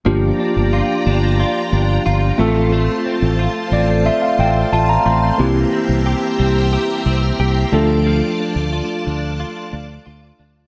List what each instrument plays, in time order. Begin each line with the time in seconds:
0.05 fingered electric bass G1, clean electric guitar F3, tine electric piano A#3 D4 F4 G4, string machine F4 D5 G5 A#5
0.39 clean electric guitar D4
0.56 fingered electric bass G1
0.73 clean electric guitar F4
1.06 fingered electric bass G1, clean electric guitar D4
1.39 clean electric guitar F4
1.72 fingered electric bass G1, clean electric guitar D4
2.06 fingered electric bass G1, clean electric guitar F4
2.38 fingered electric bass A1, tine electric piano A3 C4 F4 A4, clean electric guitar A3, string machine C5 A5 C6
2.72 clean electric guitar A3
3.06 clean electric guitar C4
3.22 fingered electric bass A1
3.39 clean electric guitar F4
3.71 fingered electric bass A1, clean electric guitar C4, tine electric piano D5
4.06 clean electric guitar F4, tine electric piano E5
4.22 tine electric piano F5
4.38 fingered electric bass A1, clean electric guitar C4, tine electric piano G5
4.72 fingered electric bass A1, clean electric guitar F4, tine electric piano A5
4.89 tine electric piano A#5
5.05 fingered electric bass A1, clean electric guitar C4, tine electric piano C6
5.38 fingered electric bass C2, clean electric guitar E3, tine electric piano A#3 C4 E4 G4, string machine G4 E5 A#5
5.73 clean electric guitar C4
5.89 fingered electric bass C2
6.06 clean electric guitar G4
6.39 fingered electric bass C2, clean electric guitar C4
6.73 clean electric guitar G4
7.06 fingered electric bass C2, clean electric guitar C4
7.39 fingered electric bass C2, clean electric guitar G4
7.72 fingered electric bass D2, clean electric guitar F3, tine electric piano A3 D4 F4 A4, string machine F4 D5 A5 D6
8.06 clean electric guitar F3
8.40 clean electric guitar D4
8.56 fingered electric bass D2
8.73 clean electric guitar F4
9.06 fingered electric bass D2, clean electric guitar D4
9.40 clean electric guitar F4
9.73 fingered electric bass D2, clean electric guitar D4
10.06 fingered electric bass D2, clean electric guitar F4
10.39 fingered electric bass D2, clean electric guitar D4